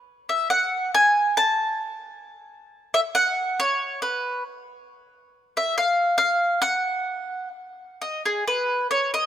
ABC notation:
X:1
M:3/4
L:1/8
Q:1/4=136
K:F#m
V:1 name="Mandolin"
z e f2 g2 | a2 z4 | z e f2 c2 | B2 z4 |
z e ^e2 e2 | f4 z2 | [K:Bmix] d G B2 c d |]